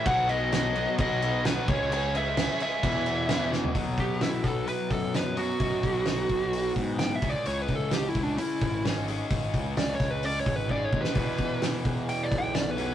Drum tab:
CC |x-x-x-x-x-x-x-x-|x-x-x-x-x-x-x---|----------------|----------------|
HH |----------------|----------------|o-o-o-o-o-o-o-o-|o-o-o-o-o-o-o-o-|
SD |----o-------o---|----o-------o-o-|----o-o-----o---|----o-------o---|
FT |----------------|---------------o|----------------|----------------|
BD |o-------o-----o-|--------o-------|o-o---o---o-----|o-o---o---o---o-|

CC |----------------|----------------|----------------|
HH |o-o-o-o-o-o-o-o-|o-o-o-o-o-o-----|o-o-o-o-o-o-o-o-|
SD |----o-------o---|----o-o--------o|----o-------o---|
FT |----------------|----------------|----------------|
BD |--o---o---o-----|o-o---o---o-o-o-|o-o---o---o-----|